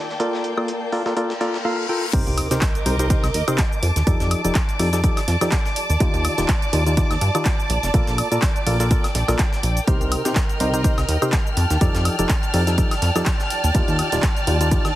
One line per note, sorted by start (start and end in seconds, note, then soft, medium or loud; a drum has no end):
0.00 1.65 A#3 medium
0.00 1.65 D5 medium
0.00 1.65 G5 medium
0.00 1.65 A5 medium
0.00 1.65 G6 medium
0.09 snare soft
0.20 0.54 A#3 medium
0.20 0.54 F4 medium
0.20 0.54 A4 medium
0.20 0.54 A#4 medium
0.20 0.54 D5 loud
0.20 closed hi-hat medium
0.33 snare soft
0.44 closed hi-hat medium
0.57 0.72 A#3 medium
0.57 0.72 F4 medium
0.57 0.72 A4 medium
0.57 0.72 A#4 medium
0.57 0.72 D5 medium
0.57 high woodblock medium
0.68 closed hi-hat medium
0.92 1.03 A#3 medium
0.92 1.03 F4 medium
0.92 1.03 A4 medium
0.92 1.03 A#4 medium
0.92 1.03 D5 medium
0.92 open hi-hat medium
1.06 1.14 A#3 medium
1.06 1.14 F4 medium
1.06 1.14 A4 medium
1.06 1.14 A#4 medium
1.06 1.14 D5 medium
1.06 snare soft
1.17 1.33 A#3 medium
1.17 1.33 F4 medium
1.17 1.33 A4 medium
1.17 1.33 A#4 medium
1.17 1.33 D5 loud
1.17 closed hi-hat medium
1.17 reverse cymbal medium
1.30 snare soft
1.41 1.57 A#3 medium
1.41 1.57 F4 medium
1.41 1.57 A4 medium
1.41 1.57 A#4 medium
1.41 1.57 D5 loud
1.41 snare soft
1.41 closed hi-hat medium
1.54 snare soft
1.65 1.87 A#3 medium
1.65 1.87 F4 medium
1.65 1.87 A4 medium
1.65 1.87 A#4 medium
1.65 1.87 F5 loud
1.89 2.06 F4 medium
1.89 2.06 A4 medium
1.89 2.06 A#4 medium
1.89 2.06 G5 medium
2.13 2.22 C2 loud
2.13 2.48 C3 loud
2.13 2.48 D#4 medium
2.13 2.48 G4 medium
2.13 2.48 A#4 medium
2.13 3.83 A#4 medium
2.13 2.48 C5 loud
2.13 9.89 D6 medium
2.13 kick loud
2.13 closed hi-hat medium
2.13 crash loud
2.13 sub drop medium
2.13 shaker medium
2.27 2.41 C2 loud
2.27 closed hi-hat soft
2.27 shaker soft
2.38 closed hi-hat medium
2.38 open hi-hat loud
2.38 high woodblock medium
2.51 2.66 C3 medium
2.51 2.58 C3 medium
2.51 2.66 D#4 medium
2.51 2.66 G4 medium
2.51 2.66 A#4 medium
2.51 2.66 C5 medium
2.51 snare medium
2.51 closed hi-hat medium
2.51 shaker medium
2.56 3.83 D#5 medium
2.61 kick loud
2.61 snare loud
2.61 clap loud
2.61 closed hi-hat medium
2.61 shaker medium
2.75 closed hi-hat soft
2.75 shaker soft
2.86 3.16 C2 loud
2.86 2.96 C3 medium
2.86 2.96 D#4 medium
2.86 2.96 G4 medium
2.86 2.96 A#4 medium
2.86 2.96 C5 medium
2.86 closed hi-hat medium
2.86 open hi-hat loud
2.99 3.08 C3 medium
2.99 3.08 D#4 medium
2.99 3.08 G4 medium
2.99 3.08 A#4 medium
2.99 3.08 C5 medium
2.99 closed hi-hat medium
2.99 shaker medium
3.10 3.27 C3 medium
3.10 3.27 D#4 medium
3.10 3.27 G4 medium
3.10 3.27 A#4 medium
3.10 3.27 C5 loud
3.10 kick loud
3.10 closed hi-hat medium
3.10 shaker medium
3.24 3.30 C2 medium
3.24 snare soft
3.24 closed hi-hat soft
3.24 high woodblock medium
3.24 shaker soft
3.34 3.43 D#2 medium
3.34 closed hi-hat medium
3.34 open hi-hat loud
3.48 3.63 C3 loud
3.48 3.63 D#4 medium
3.48 3.63 G4 medium
3.48 3.63 A#4 loud
3.48 3.63 C5 loud
3.48 closed hi-hat medium
3.48 high woodblock medium
3.48 shaker medium
3.58 kick loud
3.58 snare loud
3.58 clap loud
3.58 closed hi-hat medium
3.58 shaker medium
3.72 shaker soft
3.83 3.91 F2 loud
3.83 9.88 A5 medium
3.83 closed hi-hat medium
3.83 open hi-hat loud
3.96 4.03 D#2 loud
3.96 snare soft
3.96 closed hi-hat medium
3.96 shaker medium
4.07 4.15 F2 loud
4.07 4.41 F3 loud
4.07 4.41 D#4 medium
4.07 4.41 G4 medium
4.07 4.41 A4 medium
4.07 4.41 D5 loud
4.07 kick loud
4.07 closed hi-hat medium
4.07 shaker medium
4.15 9.88 D5 medium
4.20 4.34 F2 loud
4.20 snare soft
4.20 closed hi-hat soft
4.20 shaker soft
4.31 closed hi-hat medium
4.31 open hi-hat loud
4.31 high woodblock medium
4.44 4.51 F1 medium
4.44 4.59 F3 medium
4.44 4.59 D#4 medium
4.44 4.59 G4 medium
4.44 4.59 A4 medium
4.44 4.59 D5 medium
4.44 closed hi-hat medium
4.44 shaker medium
4.55 kick loud
4.55 snare loud
4.55 clap loud
4.55 closed hi-hat medium
4.55 shaker medium
4.69 closed hi-hat soft
4.69 shaker soft
4.79 5.09 F2 medium
4.79 4.90 F3 medium
4.79 4.90 D#4 medium
4.79 4.90 G4 medium
4.79 4.90 A4 medium
4.79 4.90 D5 medium
4.79 open hi-hat medium
4.79 open hi-hat loud
4.93 5.01 F3 medium
4.93 5.01 D#4 medium
4.93 5.01 G4 medium
4.93 5.01 A4 medium
4.93 5.01 D5 medium
4.93 snare medium
4.93 closed hi-hat medium
4.93 shaker medium
5.04 5.20 F3 medium
5.04 5.20 D#4 medium
5.04 5.20 G4 medium
5.04 5.20 A4 medium
5.04 5.20 D5 loud
5.04 kick loud
5.04 closed hi-hat medium
5.04 shaker medium
5.17 snare medium
5.17 open hi-hat medium
5.17 high woodblock medium
5.17 shaker soft
5.28 5.36 F2 medium
5.28 snare medium
5.28 closed hi-hat medium
5.28 open hi-hat loud
5.41 5.48 F2 loud
5.41 5.56 F3 loud
5.41 5.56 D#4 medium
5.41 5.56 G4 loud
5.41 5.56 A4 medium
5.41 5.56 D5 loud
5.41 snare medium
5.41 closed hi-hat medium
5.41 high woodblock medium
5.41 shaker medium
5.51 kick loud
5.51 snare loud
5.51 clap loud
5.51 closed hi-hat medium
5.51 shaker medium
5.66 snare soft
5.66 shaker soft
5.76 closed hi-hat medium
5.76 open hi-hat loud
5.90 5.96 D#2 loud
5.90 closed hi-hat soft
5.90 shaker medium
6.00 6.09 D#2 loud
6.00 6.35 D#3 loud
6.00 6.35 D#4 medium
6.00 6.35 F4 medium
6.00 6.35 G4 medium
6.00 6.35 D5 loud
6.00 kick loud
6.00 closed hi-hat medium
6.00 shaker medium
6.14 6.28 D#2 loud
6.14 closed hi-hat soft
6.14 shaker soft
6.25 closed hi-hat medium
6.25 open hi-hat loud
6.25 high woodblock medium
6.38 6.45 D#1 medium
6.38 6.53 D#3 medium
6.38 6.53 D#4 medium
6.38 6.53 F4 medium
6.38 6.53 G4 medium
6.38 6.53 D5 medium
6.38 snare medium
6.38 closed hi-hat medium
6.38 shaker medium
6.48 kick loud
6.48 snare loud
6.48 clap loud
6.48 closed hi-hat medium
6.48 shaker medium
6.62 closed hi-hat soft
6.62 shaker soft
6.73 7.03 D#2 loud
6.73 6.83 D#3 medium
6.73 6.83 D#4 medium
6.73 6.83 F4 medium
6.73 6.83 G4 medium
6.73 6.83 D5 medium
6.73 closed hi-hat medium
6.73 open hi-hat loud
6.86 6.95 D#3 medium
6.86 6.95 D#4 medium
6.86 6.95 F4 medium
6.86 6.95 G4 medium
6.86 6.95 D5 medium
6.86 closed hi-hat soft
6.86 shaker medium
6.97 7.14 D#3 medium
6.97 7.14 D#4 medium
6.97 7.14 F4 medium
6.97 7.14 G4 medium
6.97 7.14 D5 loud
6.97 kick loud
6.97 closed hi-hat medium
6.97 shaker medium
7.11 7.17 D#2 medium
7.11 snare soft
7.11 closed hi-hat soft
7.11 high woodblock medium
7.11 shaker soft
7.21 7.30 G2 loud
7.21 closed hi-hat medium
7.21 open hi-hat loud
7.35 7.50 D#3 loud
7.35 7.50 D#4 medium
7.35 7.50 F4 medium
7.35 7.50 G4 medium
7.35 7.50 D5 loud
7.35 closed hi-hat medium
7.35 high woodblock medium
7.35 shaker medium
7.45 kick loud
7.45 snare loud
7.45 clap loud
7.45 closed hi-hat medium
7.45 shaker medium
7.60 shaker soft
7.70 7.78 A#1 loud
7.70 closed hi-hat medium
7.70 open hi-hat loud
7.83 7.90 F1 loud
7.83 snare soft
7.83 closed hi-hat soft
7.83 shaker medium
7.94 8.02 A#1 loud
7.94 8.28 A#3 medium
7.94 8.28 F4 medium
7.94 8.28 A4 medium
7.94 8.28 A#4 medium
7.94 8.28 D5 loud
7.94 kick loud
7.94 closed hi-hat medium
7.94 shaker medium
8.07 8.22 A#1 loud
8.07 snare soft
8.07 closed hi-hat soft
8.07 shaker soft
8.18 closed hi-hat medium
8.18 open hi-hat loud
8.18 high woodblock medium
8.31 8.38 A#2 medium
8.31 8.46 A#3 medium
8.31 8.46 F4 medium
8.31 8.46 A4 medium
8.31 8.46 A#4 medium
8.31 8.46 D5 medium
8.31 closed hi-hat medium
8.31 shaker medium
8.42 kick loud
8.42 snare loud
8.42 clap loud
8.42 closed hi-hat medium
8.42 shaker medium
8.55 14.96 G5 medium
8.55 closed hi-hat soft
8.55 shaker soft
8.66 8.96 A#1 medium
8.66 8.77 A#3 medium
8.66 8.77 F4 medium
8.66 8.77 A4 medium
8.66 8.77 A#4 medium
8.66 8.77 D5 medium
8.66 open hi-hat medium
8.66 open hi-hat loud
8.80 8.88 A#3 medium
8.80 8.88 F4 medium
8.80 8.88 A4 medium
8.80 8.88 A#4 medium
8.80 8.88 D5 medium
8.80 snare medium
8.80 closed hi-hat medium
8.80 shaker medium
8.91 9.07 A#3 medium
8.91 9.07 F4 medium
8.91 9.07 A4 medium
8.91 9.07 A#4 medium
8.91 9.07 D5 loud
8.91 kick loud
8.91 closed hi-hat medium
8.91 shaker medium
9.04 snare soft
9.04 open hi-hat medium
9.04 high woodblock medium
9.04 shaker soft
9.15 9.23 A#1 medium
9.15 snare medium
9.15 closed hi-hat medium
9.15 open hi-hat loud
9.28 9.35 A#1 loud
9.28 9.43 A#3 loud
9.28 9.43 F4 medium
9.28 9.43 A4 loud
9.28 9.43 A#4 medium
9.28 9.43 D5 loud
9.28 snare medium
9.28 closed hi-hat medium
9.28 high woodblock medium
9.28 shaker medium
9.39 kick loud
9.39 snare loud
9.39 clap loud
9.39 closed hi-hat medium
9.39 shaker medium
9.53 snare soft
9.53 shaker soft
9.63 9.79 A#1 loud
9.63 closed hi-hat medium
9.63 open hi-hat loud
9.77 closed hi-hat soft
9.77 shaker medium
9.87 9.96 C2 loud
9.87 10.22 C3 loud
9.87 10.22 D#4 medium
9.87 10.22 G4 medium
9.87 10.22 A#4 medium
9.87 11.57 A#4 medium
9.87 10.22 C5 loud
9.87 14.96 F6 medium
9.87 kick loud
9.87 closed hi-hat medium
9.87 shaker medium
10.01 10.15 C2 loud
10.01 closed hi-hat soft
10.01 shaker soft
10.12 closed hi-hat medium
10.12 open hi-hat loud
10.12 high woodblock medium
10.25 10.40 C3 medium
10.25 10.32 C3 medium
10.25 10.40 D#4 medium
10.25 10.40 G4 medium
10.25 10.40 A#4 medium
10.25 10.40 C5 medium
10.25 11.57 D#5 medium
10.25 snare medium
10.25 closed hi-hat medium
10.25 shaker medium
10.35 kick loud
10.35 snare loud
10.35 clap loud
10.35 closed hi-hat medium
10.35 shaker medium
10.49 closed hi-hat soft
10.49 shaker soft
10.60 10.90 C2 loud
10.60 10.70 C3 medium
10.60 10.70 D#4 medium
10.60 10.70 G4 medium
10.60 10.70 A#4 medium
10.60 10.70 C5 medium
10.60 closed hi-hat medium
10.60 open hi-hat loud
10.74 10.82 C3 medium
10.74 10.82 D#4 medium
10.74 10.82 G4 medium
10.74 10.82 A#4 medium
10.74 10.82 C5 medium
10.74 closed hi-hat medium
10.74 shaker medium
10.84 11.01 C3 loud
10.84 11.01 D#4 medium
10.84 11.01 G4 medium
10.84 11.01 A#4 medium
10.84 11.01 C5 loud
10.84 kick loud
10.84 closed hi-hat medium
10.84 shaker medium
10.98 11.05 C2 medium
10.98 snare soft
10.98 closed hi-hat soft
10.98 high woodblock medium
10.98 shaker soft
11.09 11.17 D#2 loud
11.09 closed hi-hat medium
11.09 open hi-hat loud
11.22 11.37 C3 loud
11.22 11.37 D#4 medium
11.22 11.37 G4 medium
11.22 11.37 A#4 medium
11.22 11.37 C5 loud
11.22 closed hi-hat medium
11.22 high woodblock medium
11.22 shaker medium
11.32 kick loud
11.32 snare loud
11.32 clap loud
11.32 closed hi-hat medium
11.32 shaker medium
11.47 shaker soft
11.57 11.65 F2 loud
11.57 14.96 A5 medium
11.57 closed hi-hat medium
11.57 open hi-hat loud
11.70 11.77 D#2 loud
11.70 snare soft
11.70 closed hi-hat soft
11.70 shaker medium
11.81 12.16 F3 loud
11.81 12.16 D#4 medium
11.81 12.16 G4 medium
11.81 12.16 A4 medium
11.81 12.16 D5 loud
11.81 14.96 D5 medium
11.81 kick loud
11.81 closed hi-hat medium
11.81 shaker medium
11.95 12.09 F2 loud
11.95 snare soft
11.95 closed hi-hat soft
11.95 shaker soft
12.05 closed hi-hat medium
12.05 open hi-hat loud
12.05 high woodblock medium
12.19 12.25 F1 medium
12.19 12.34 F3 medium
12.19 12.34 D#4 medium
12.19 12.34 G4 medium
12.19 12.34 A4 medium
12.19 12.34 D5 medium
12.19 closed hi-hat medium
12.19 shaker medium
12.29 kick loud
12.29 snare loud
12.29 clap loud
12.29 closed hi-hat medium
12.29 shaker medium
12.43 closed hi-hat soft
12.43 shaker soft
12.54 12.83 F2 medium
12.54 12.64 F3 medium
12.54 12.64 D#4 medium
12.54 12.64 G4 medium
12.54 12.64 A4 medium
12.54 12.64 D5 medium
12.54 open hi-hat loud
12.54 open hi-hat medium
12.67 12.75 F3 medium
12.67 12.75 D#4 medium
12.67 12.75 G4 medium
12.67 12.75 A4 medium
12.67 12.75 D5 medium
12.67 snare medium
12.67 closed hi-hat medium
12.67 shaker medium
12.78 12.95 F3 loud
12.78 12.95 D#4 medium
12.78 12.95 G4 medium
12.78 12.95 A4 medium
12.78 12.95 D5 loud
12.78 kick loud
12.78 closed hi-hat medium
12.78 shaker medium
12.91 snare medium
12.91 open hi-hat medium
12.91 high woodblock medium
12.91 shaker soft
13.02 13.11 F2 medium
13.02 snare soft
13.02 closed hi-hat medium
13.02 open hi-hat loud
13.15 13.22 F2 loud
13.15 13.30 F3 loud
13.15 13.30 D#4 loud
13.15 13.30 G4 medium
13.15 13.30 A4 medium
13.15 13.30 D5 loud
13.15 snare soft
13.15 closed hi-hat medium
13.15 high woodblock medium
13.15 shaker medium
13.26 kick loud
13.26 snare loud
13.26 clap loud
13.26 closed hi-hat medium
13.26 shaker medium
13.40 snare soft
13.40 shaker soft
13.50 closed hi-hat medium
13.50 open hi-hat loud
13.64 13.71 D#2 loud
13.64 closed hi-hat medium
13.64 shaker medium
13.75 13.83 D#2 loud
13.75 14.09 D#3 medium
13.75 14.09 D#4 medium
13.75 14.09 F4 medium
13.75 14.09 G4 medium
13.75 14.09 D5 loud
13.75 kick loud
13.75 closed hi-hat medium
13.75 shaker medium
13.88 14.02 D#2 loud
13.88 closed hi-hat soft
13.88 shaker soft
13.99 closed hi-hat medium
13.99 open hi-hat loud
13.99 high woodblock medium
14.12 14.19 D#1 medium
14.12 14.27 D#3 medium
14.12 14.27 D#4 medium
14.12 14.27 F4 medium
14.12 14.27 G4 medium
14.12 14.27 D5 medium
14.12 snare medium
14.12 closed hi-hat medium
14.12 shaker medium
14.22 kick loud
14.22 snare loud
14.22 clap loud
14.22 closed hi-hat medium
14.22 shaker medium
14.37 closed hi-hat soft
14.37 shaker soft
14.47 14.77 D#2 loud
14.47 14.57 D#3 medium
14.47 14.57 D#4 medium
14.47 14.57 F4 medium
14.47 14.57 G4 medium
14.47 14.57 D5 medium
14.47 closed hi-hat medium
14.47 open hi-hat loud
14.61 14.69 D#3 medium
14.61 14.69 D#4 medium
14.61 14.69 F4 medium
14.61 14.69 G4 medium
14.61 14.69 D5 medium
14.61 closed hi-hat medium
14.61 shaker medium
14.71 14.88 D#4 medium
14.71 14.88 F4 medium
14.71 14.88 G4 medium
14.71 14.88 D5 loud
14.71 kick loud
14.71 closed hi-hat medium
14.71 shaker medium
14.85 14.92 D#2 medium
14.85 snare soft
14.85 closed hi-hat soft
14.85 high woodblock medium
14.85 shaker soft